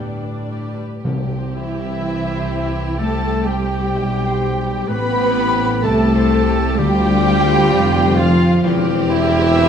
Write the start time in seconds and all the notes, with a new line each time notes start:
Already playing: G2 A2 D3 G3 B3 D4 G4 B4 D5 G5
0.23 D4 B4
0.52 G4 D5
0.77 G4 B4
1.04 C2 C3 C4 G4
1.38 C4
1.54 E3 E4 E5
1.71 G4
2.03 E5
2.36 C5
2.68 G4
2.98 G3 A3 A4 A5
3.31 C4
3.46 G3 G4 G5
3.63 G4
3.93 B1 E5
4.27 C5
4.58 G4
4.88 A1 A2 B3 C4 G4 B4 B5
5.21 C4
5.52 G4
5.83 C2 A3 C4 G4 A4 E5 A5
6.16 C5
6.47 G4
6.78 D2 D3 G3 C4 F4 G4 G5
7.10 C4
7.42 F4
7.72 F1 F2 D5
8.02 C5
8.18 F3 F4 F5
8.33 F4
8.64 E1 E2 C4 G4
8.94 C4
9.09 E3 E4 E5
9.24 G4
9.56 C5